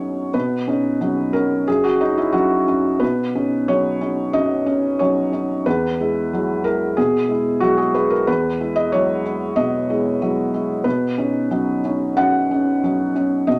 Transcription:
Already playing: F#2 F#3 C#4 D#4 C#5
0.34 B2 B4
0.68 C#4 D#4
1.01 F#3 C#4 D#4
1.33 C#4 D#4 A#4
1.68 F#2 G#4
1.84 F#4
2.01 C#4 D#4
2.18 E4
2.33 F#3 C#4 D#4 F#4
2.68 C#4 D#4
3.00 B2 B4
3.35 C#4 D#4
3.68 F#3 C#4 D#4 C#5
4.01 C#4 D#4
4.33 F#2 D#5
4.66 C#4 D#4
4.99 F#3 C#4 D#4 C#5
5.32 C#4 D#4
5.66 E2 B4
6.00 G#3 E4
6.33 F#3 G#3 E4
6.64 G#3 E4 A#4
6.97 B2 G#4
7.29 G#3 E4
7.60 F#3 G#3 E4 F#4
7.78 G#4
7.94 G#3 E4 B4
8.10 A#4
8.27 E2 B4
8.60 G#3 E4
8.76 D#5
8.92 F#3 G#3 E4 C#5
9.26 G#3 E4
9.56 B2 D#5
9.90 G#3 E4
10.22 F#3 G#3 E4
10.54 G#3 E4
10.84 B2 B4
11.18 C#4 D#4
11.51 F#3 C#4 D#4
11.85 C#4 D#4
12.17 F#2 F#5
12.51 C#4 D#4
12.83 F#3 C#4 D#4
13.16 C#4 D#4
13.47 B2 D#5

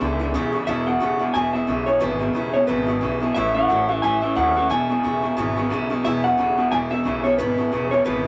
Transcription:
Already playing: E5
0.00 C#2 E2 D3 E3 G#3 B3 E4
0.19 E2 D3 E3 G#3 B3 E4
0.34 E2 B2 C#3 E3 G#3 B3 E4
0.53 E2 C#3 E3 G#3 B3 E4
0.67 E1 E2 B2 E3 G#3 B3 E4 E5
0.86 E2 B2 E3 G#3 B3 E4 F#5
1.00 E1 E2 C#3 E3 G#3 B3 E4
1.19 E2 B2 E3 G#3 B3 E4
1.34 E1 E2 B2 E3 G#3 B3 E4 G#5
1.53 E2 B2 E3 G#3 B3 E4 E5
1.67 B1 E2 C#3 E3 G#3 B3 E4
1.86 E2 B2 E3 G#3 B3 E4 C#5
2.00 G#1 E2 B2 E3 G#3 B3 E4 B4
2.19 E2 B2 E3 G#3 B3 E4
2.33 E1 E2 C#3 E3 G#3 B3 E4
2.53 E2 B2 E3 G#3 B3 E4 C#5
2.67 G#1 E2 B2 E3 G#3 B3 E4 B4
2.87 E2 B2 E3 G#3 B3 E4
3.01 B1 E2 C#3 E3 G#3 B3 E4
3.20 E2 B2 E3 G#3 B3 E4
3.34 A1 A2 E3 A3 C#4 E4 E5
3.54 A2 E3 A3 C#4 E4 F#5
3.69 A1 A2 E3 F#3 A3 C#4 E4
3.89 A2 E3 A3 C#4 E4
4.02 A1 A2 E3 A3 C#4 E4 G#5
4.22 A2 E3 A3 C#4 E4 E5
4.35 D#2 A2 E3 F#3 A3 C#4 E4 F#5
4.55 A2 E3 A3 C#4 E4
4.70 E1 E2 B2 E3 G#3 B3 E4 G#5
4.89 E2 B2 E3 G#3 B3 E4
5.03 E1 E2 C#3 E3 G#3 B3 E4
5.22 E2 B2 E3 G#3 B3 E4
5.37 G#1 E2 B2 E3 G#3 B3 E4
5.56 E2 B2 E3 G#3 B3 E4
5.70 B1 E2 C#3 E3 G#3 B3 E4
5.90 E2 B2 E3 G#3 B3 E4
6.04 E1 E2 B2 E3 G#3 B3 E4 E5
6.23 E2 B2 E3 G#3 B3 E4 F#5
6.37 E1 E2 C#3 E3 G#3 B3 E4
6.57 E2 B2 E3 G#3 B3 E4
6.71 E1 E2 B2 E3 G#3 B3 E4 G#5
6.90 E2 B2 E3 G#3 B3 E4 E5
7.04 B1 E2 C#3 E3 G#3 B3 E4
7.24 E2 B2 E3 G#3 B3 E4 C#5
7.38 G#1 E2 B2 E3 G#3 B3 E4 B4
7.58 E2 B2 E3 G#3 B3 E4
7.72 E1 E2 C#3 E3 G#3 B3 E4
7.91 E2 B2 E3 G#3 B3 E4 C#5
8.05 G#1 E2 B2 E3 G#3 B3 E4 B4
8.24 E4

